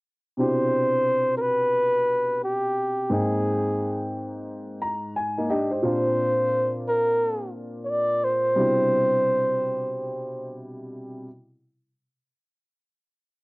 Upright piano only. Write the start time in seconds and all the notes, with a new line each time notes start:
0.37 B2 C3 D4 E4 G4
3.09 G#2 A#3 C4 D#4 G5
4.82 A#5
5.16 G#5
5.38 A#3 D#4
5.50 D4 G4 D#5
5.71 G4 C5
5.83 A#2 A#3 C4 D4 F4
8.55 B2 C3 G3 D4 E4